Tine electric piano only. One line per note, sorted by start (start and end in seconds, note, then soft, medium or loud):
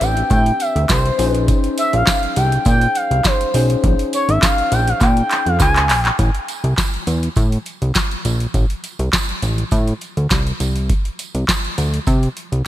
0.00 1.15 C4 medium
0.00 1.15 D4 medium
0.00 1.15 G4 medium
0.00 1.15 B4 medium
1.18 3.50 C#4 medium
1.18 3.50 D#4 medium
1.18 3.50 G#4 medium
1.18 3.51 C5 medium
3.54 5.85 C#4 medium
3.54 5.86 D#4 medium
3.54 5.86 G#4 medium
3.54 5.86 C5 medium